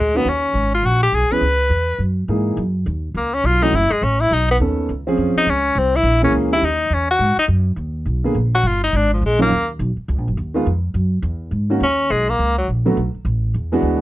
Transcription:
Already playing: upright bass D2
0.00 tenor saxophone G#3
0.15 grand piano D#3 A#3 C#4 F#4, tenor saxophone B3
0.25 upright bass D#2, tenor saxophone C#4
0.54 upright bass G#1
0.75 tenor saxophone F4
0.83 upright bass A#1, tenor saxophone F#4
1.03 tenor saxophone G4
1.12 upright bass B1, tenor saxophone G#4
1.31 grand piano E3 B3 C#4 G#4, tenor saxophone B4
1.41 upright bass C#2
1.70 upright bass E2
1.99 upright bass F#2
2.28 upright bass G#2, grand piano E3 A#3 D#4 G#4
2.57 upright bass F#2
2.86 upright bass D#2
3.14 upright bass C#2, tenor saxophone A#3
3.34 tenor saxophone C#4
3.44 upright bass B1, tenor saxophone F4
3.61 grand piano E3 A3 C#4 F#4, tenor saxophone D#4
3.73 upright bass F#1, tenor saxophone E4
3.91 tenor saxophone G#3, muted upright bass stroke
4.02 upright bass A1, tenor saxophone C#4
4.21 tenor saxophone E4
4.31 upright bass B1, tenor saxophone D#4
4.51 tenor saxophone B3
4.60 upright bass D#2, grand piano D#3 B3 C#4 A4
4.89 upright bass C#2
5.07 grand piano F3 C4 C#4 G#4
5.17 upright bass F2
5.36 tenor saxophone D#4, muted upright bass stroke
5.46 upright bass C#2, tenor saxophone C#4
5.75 upright bass C2, tenor saxophone C4
5.96 tenor saxophone E4
6.03 upright bass A#1
6.22 grand piano E3 A#3 C#4 G#4, tenor saxophone C#4
6.32 upright bass C#2
6.51 grand piano E3 C#4 D#4 G4, tenor saxophone E4
6.61 upright bass D#2, tenor saxophone D#4
6.90 upright bass E2, tenor saxophone C#4
7.11 tenor saxophone F#4
7.19 upright bass G#2
7.37 tenor saxophone D#4, muted upright bass stroke
7.48 upright bass F#2
7.76 upright bass D#2
8.06 upright bass B1
8.24 grand piano D3 A#3 B3 G#4
8.34 upright bass A#1
8.55 tenor saxophone F#4
8.63 upright bass G1, tenor saxophone F4
8.84 tenor saxophone D#4
8.93 upright bass G#1, tenor saxophone D4
9.14 tenor saxophone F3
9.21 upright bass A#1
9.26 tenor saxophone G#3
9.39 grand piano D#3 F#3 C#4 F4, tenor saxophone A#3
9.51 upright bass D#2
9.79 upright bass B1
9.96 muted upright bass stroke
10.08 upright bass C#2
10.18 upright bass A#1
10.28 upright bass F#1
10.37 upright bass D#2
10.54 grand piano D#3 G#3 B3 F4
10.66 upright bass F2
10.94 upright bass F#2
11.22 upright bass E2
11.51 upright bass G#2
11.70 grand piano D#3 A#3 C#4 F#4
11.80 upright bass D#2, tenor saxophone C#4
12.10 upright bass B1, tenor saxophone G#3
12.29 tenor saxophone A#3
12.39 upright bass C#2
12.58 tenor saxophone F#3
12.68 upright bass A#1
12.85 grand piano D3 F#3 A3 B3 F#4
12.97 upright bass B1
13.14 muted upright bass stroke
13.25 upright bass A1
13.54 upright bass E2
13.72 grand piano E3 G#3 B3 D4 F#4
13.82 upright bass D2

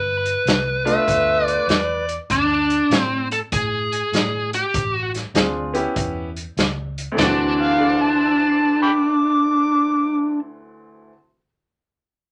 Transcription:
Already playing: fingered electric bass G1, lead electric guitar B4
0.26 closed hi-hat
0.45 fingered electric bass C2, snare, closed hi-hat
0.85 upright piano A3 B3 D4 F4, harmonica E5, closed hi-hat
1.07 fingered electric bass D2, kick, closed hi-hat
1.46 harmonica D5, closed hi-hat
1.67 fingered electric bass E2, harmonica D5, snare, closed hi-hat
2.09 closed hi-hat
2.30 fingered electric bass D2, lead electric guitar D4, kick, closed hi-hat
2.70 closed hi-hat
2.90 fingered electric bass A2, snare, closed hi-hat
2.99 lead electric guitar C4
3.31 lead electric guitar A4, closed hi-hat
3.52 fingered electric bass A2, lead electric guitar G#4, kick, closed hi-hat
3.92 closed hi-hat
4.12 fingered electric bass A2, snare, closed hi-hat
4.53 lead electric guitar G4, closed hi-hat
4.74 fingered electric bass A1, kick, closed hi-hat
4.95 lead electric guitar F#4
5.15 snare, closed hi-hat
5.34 fingered electric bass D2, upright piano C4 D4 F4 G#4, snare, closed hi-hat
5.74 upright piano B3 C#4 E4 G4, closed hi-hat
5.96 fingered electric bass E2, kick, closed hi-hat
6.37 closed hi-hat
6.57 fingered electric bass C#2, snare, closed hi-hat
6.98 closed hi-hat
7.12 upright piano D2 D3
7.18 fingered electric bass D2, upright piano E3 C4, lead electric guitar D4, snare, floor tom, splash
7.23 upright piano F#4
7.61 harmonica F5
7.80 upright piano A4
7.87 upright piano C5
7.96 upright piano E5
8.01 harmonica A5, upright piano A5
8.14 upright piano C6
8.25 upright piano E6
8.37 upright piano A6
8.49 upright piano C7
8.83 harmonica G5 B5 D6

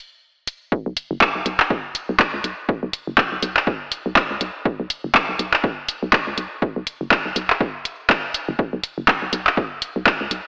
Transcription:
0.47 closed hi-hat
0.72 kick
0.86 fm bass B1
0.97 closed hi-hat
1.11 fm bass F#1
1.21 kick, clap
1.35 fm bass B1
1.46 fm bass B1, closed hi-hat
1.60 fm bass A1, clap
1.70 kick
1.85 fm bass B1
1.95 closed hi-hat
2.09 fm bass B1
2.20 kick, clap
2.34 fm bass C#2
2.44 fm bass B1, closed hi-hat
2.69 kick
2.83 fm bass B1
2.93 closed hi-hat
3.07 fm bass F#1
3.18 kick, clap
3.32 fm bass B1
3.43 fm bass B1, closed hi-hat
3.57 fm bass A1, clap
3.67 kick
3.81 fm bass B1
3.92 closed hi-hat
4.06 fm bass B1
4.16 kick, clap
4.30 fm bass C#2
4.41 fm bass B1, closed hi-hat
4.65 kick
4.80 fm bass B1
4.90 closed hi-hat
5.04 fm bass F#1
5.15 kick, clap
5.29 fm bass B1
5.39 fm bass B1, closed hi-hat
5.53 fm bass A1, clap
5.64 kick
5.78 fm bass B1
5.88 closed hi-hat
6.03 fm bass B1
6.13 kick, clap
6.27 fm bass C#2
6.38 fm bass B1, closed hi-hat
6.62 kick
6.76 fm bass B1
6.87 closed hi-hat
7.01 fm bass F#1
7.11 kick, clap
7.26 fm bass B1
7.36 fm bass B1, closed hi-hat
7.50 fm bass A1, clap
7.61 kick
7.75 fm bass B1
7.85 closed hi-hat
8.10 kick, clap
8.34 closed hi-hat
8.49 fm bass F#1
8.59 kick
8.73 fm bass B1
8.84 closed hi-hat
8.98 fm bass F#1
9.08 kick, clap
9.22 fm bass B1
9.33 fm bass B1, closed hi-hat
9.47 fm bass A1, clap
9.57 kick
9.71 fm bass B1
9.82 closed hi-hat
9.96 fm bass B1
10.06 kick, clap
10.21 fm bass C#2
10.31 fm bass B1, closed hi-hat

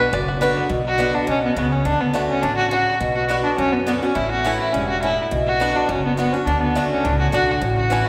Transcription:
Already playing: steel-string acoustic guitar D3 B3 D4 F#4
0.00 five-string banjo B4
0.12 upright bass F#1, steel-string acoustic guitar F#2, five-string banjo D5
0.28 five-string banjo F#4
0.41 steel-string acoustic guitar D3 B3 D4 F#4, five-string banjo B4
0.57 five-string banjo B3
0.69 upright bass B1, steel-string acoustic guitar B2
0.87 fiddle F#4
0.98 steel-string acoustic guitar D3 B3 D4 F#4, five-string banjo B3 F#4
1.15 fiddle D4
1.27 upright bass B1, steel-string acoustic guitar B2, fiddle C#4
1.45 fiddle B3
1.56 upright bass C#2, steel-string acoustic guitar C#3, fiddle B3, five-string banjo B3 F#4
1.72 fiddle C#4
1.85 upright bass D2, steel-string acoustic guitar D3, fiddle D4
2.01 fiddle B3
2.13 steel-string acoustic guitar D3 A3 D4 F#4, five-string banjo D4 F#4
2.29 fiddle C#4
2.43 upright bass A1, steel-string acoustic guitar D3, fiddle D4
2.57 fiddle F#4
2.71 steel-string acoustic guitar C#3, five-string banjo D4 F#4, fiddle F#4
3.00 upright bass B1, steel-string acoustic guitar B2
3.16 fiddle F#4
3.28 steel-string acoustic guitar D3 B3 D4 F#4, five-string banjo B3 F#4, fiddle F#4
3.44 fiddle D4
3.57 upright bass F#2, steel-string acoustic guitar F#2, fiddle C#4
3.72 fiddle B3
3.85 steel-string acoustic guitar D3 B3 D4 F#4, fiddle B3, five-string banjo B3 F#4
4.01 fiddle C#4, steel-string acoustic guitar D4 F#4
4.15 upright bass A1, steel-string acoustic guitar A2, fiddle E4
4.31 fiddle F#4
4.45 steel-string acoustic guitar E3 A3 C#4 E4, five-string banjo C#4 E4 A4
4.60 fiddle E4
4.73 upright bass E1, steel-string acoustic guitar G2, fiddle C#4
4.89 fiddle F#4
5.03 steel-string acoustic guitar A2, five-string banjo C#4 E4 A4, fiddle E4
5.31 upright bass B1, steel-string acoustic guitar B2
5.47 fiddle F#4
5.60 steel-string acoustic guitar D3 B3 D4 F#4, five-string banjo B3 F#4
5.76 fiddle D4
5.88 upright bass F#1, steel-string acoustic guitar F#2, fiddle C#4
6.05 fiddle B3
6.17 steel-string acoustic guitar D3 B3 D4 F#4, fiddle B3, five-string banjo B3 F#4
6.32 fiddle C#4, steel-string acoustic guitar D4 F#4
6.45 upright bass D2, steel-string acoustic guitar D3, fiddle D4
6.62 fiddle B3
6.75 steel-string acoustic guitar D3 A3 D4 F#4, five-string banjo D4 F#4
6.90 fiddle C#4
7.04 upright bass C#2, steel-string acoustic guitar A2, fiddle D4
7.20 fiddle F#4
7.32 upright bass B1, steel-string acoustic guitar D3 A3 D4 F#4, five-string banjo D4 F#4, fiddle F#4
7.62 upright bass A1, steel-string acoustic guitar A2
7.76 fiddle F#4
7.90 steel-string acoustic guitar E3 A3 C#4 E4, five-string banjo C#4 E4 A4
8.06 fiddle E4

